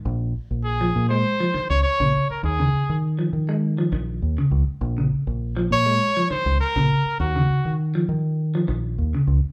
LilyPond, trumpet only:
\new Staff \with { instrumentName = "Trumpet" } { \time 4/4 \key bes \minor \tempo 4 = 101 r4 aes'8. c''4 des''16 des''8. bes'16 | aes'4 r2. | r4. des''4 c''8 bes'4 | ges'4 r2. | }